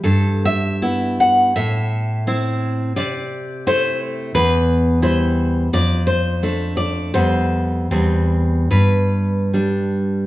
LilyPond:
\new Staff \with { instrumentName = "Nylon-string guitar" } { \time 2/4 \key a \dorian \tempo 4 = 84 << { a'8 e''4 fis''8 | e''2 | d''4 c''8 r8 | \key c \major b'4 c''4 |
d''8 c''4 d''8 | c''2 | b'4 r4 | } \\ { g,4 <b e'>4 | a,4 <c' e'>4 | c4 <a e'>4 | e,4 <g e'>4 |
f,4 <a d'>4 | <f, g b>4 <e, g c'>4 | g,4 <g d'>4 | } >> }